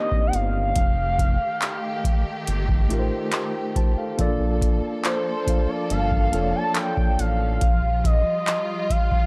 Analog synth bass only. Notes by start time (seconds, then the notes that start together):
0.34 G1
0.76 F1
2.48 G1
2.91 A1
4.19 A#1
5.91 G1
6.34 F1
7.19 A1
7.62 A#1